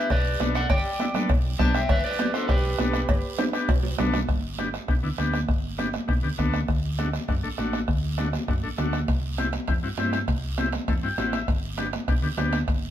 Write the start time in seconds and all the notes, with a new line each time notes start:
Already playing: B3 D4 G4 E5
0.10 B1 B4 D5, bombo low, bombo rim, cowbell, long guiro
0.25 high conga
0.40 B1 B3 D4 A4, bombo rim, high conga, low timbale, short guiro
0.55 D5 F#5, bombo rim, short guiro
0.69 G1 D5 G5, bombo low, bombo rim, cowbell, high conga, long guiro
0.99 B3 D4 E4, bombo rim, high conga, short guiro
1.14 B3 D4 A4, bombo rim, high conga, low conga, short guiro
1.29 B1, bombo low, bombo rim, cowbell, long guiro
1.45 high conga
1.59 B1 B3 D4 G4 D5 A5, bombo low, bombo rim, high conga, low conga, low timbale, short guiro
1.74 E5 G5, bombo rim, short guiro
1.89 G1 B4 E5, bombo low, bombo rim, cowbell, high conga, long guiro
2.04 B4 D5
2.19 B3 D4 G4, bombo rim, high conga, short guiro
2.34 B3 D4 F#4 A4 C5, bombo rim, short guiro
2.48 B1 G4 B4, bombo low, bombo rim, cowbell, long guiro
2.64 high conga
2.79 B1 B3 D4 A4, bombo rim, high conga, low timbale, short guiro
2.93 bombo rim, short guiro
3.09 G1, bombo low, bombo rim, cowbell, high conga, long guiro
3.38 B3 D4 G4, bombo rim, high conga, high timbale, short guiro
3.53 B3 D4 G4, bombo rim, short guiro
3.69 B1, bombo low, bombo rim, cowbell, low timbale, long guiro
3.83 high conga, low timbale
3.98 B1 B3 D4 A4, bombo rim, high conga, low conga, low timbale, short guiro
4.13 bombo rim, high conga, low timbale, short guiro
4.28 G1, bombo low, bombo rim, high conga, long guiro
4.58 B3 D4 G4, bombo rim, high conga, short guiro
4.74 bombo rim, short guiro
4.88 B1 B3 D4 G4, bombo low, bombo rim, long guiro
5.03 D2 B3 D4 E4
5.18 D2 B3 D4 G4, bombo rim, high conga, short guiro
5.33 bombo rim, high conga, short guiro
5.48 G1, bombo low, bombo rim, high conga, long guiro
5.78 B3 D4 G4, bombo rim, high conga, short guiro
5.93 bombo rim, high conga, short guiro
6.08 B1 B3 D4 G4, bombo low, bombo rim, long guiro
6.23 D2 B3 D4 G4, high conga
6.38 D2 B3 D4 A4, bombo low, bombo rim, high conga, short guiro
6.53 bombo rim, high conga, short guiro
6.68 D2, bombo low, bombo rim, high conga, long guiro
6.98 A3 D4 F#4, bombo rim, high conga, short guiro
7.13 bombo rim, high conga, short guiro
7.28 F#2 A3 D4 F#4, bombo low, bombo rim, long guiro
7.43 A1 A3 D4 A4, high conga
7.58 A1 A3 D4 F#4, bombo rim, high conga, short guiro
7.73 bombo rim, high conga, short guiro
7.88 D2, bombo low, bombo rim, high conga, long guiro
8.17 A3 D4 F#4, bombo rim, high conga, short guiro
8.33 bombo rim, high conga, short guiro
8.48 F#2 A3 D4 F#4, bombo low, bombo rim, long guiro
8.63 A1 A3 D4 A4, high conga
8.78 D2 A3 D4 F#4, bombo rim, high conga, short guiro
8.93 bombo rim, high conga, short guiro
9.08 C2, bombo low, bombo rim, high conga, high timbale, long guiro
9.38 C4 E4 G4, bombo rim, high conga, high timbale, short guiro
9.53 bombo rim, high conga, high timbale, short guiro
9.68 E2 C4 E4 G4, bombo low, bombo rim, high timbale, long guiro
9.83 G2 C4 E4 F#4, high conga
9.98 G2 C4 E4 G4, bombo rim, high conga, high timbale, low timbale, short guiro
10.13 bombo rim, high conga, high timbale, short guiro
10.28 C2, bombo low, bombo rim, high conga, high timbale, long guiro
10.58 C4 E4 G4, bombo rim, high conga, high timbale, short guiro
10.72 bombo rim, high conga, high timbale, short guiro
10.88 E2 C4 E4 A4, bombo low, bombo rim, high timbale, long guiro
11.03 G2 C4 E4 F#4 G5, high conga
11.18 A1 C4 E4 G4 F#5, bombo rim, high conga, high timbale, low timbale, short guiro
11.33 E5, bombo rim, high conga, high timbale, short guiro
11.48 G1, bombo low, bombo rim, high conga, high timbale, long guiro
11.77 B3 D4 G4, bombo rim, high conga, high timbale, short guiro
11.93 bombo rim, high conga, high timbale, short guiro
12.08 B1 B3 D4 G4, bombo low, bombo rim, high timbale, long guiro
12.22 D2 B3 D4 G4, high conga
12.37 D2 B3 D4 G4, bombo rim, high conga, high timbale, low timbale, short guiro
12.53 bombo rim, high conga, high timbale, short guiro
12.68 G1, bombo low, bombo rim, high conga, high timbale, long guiro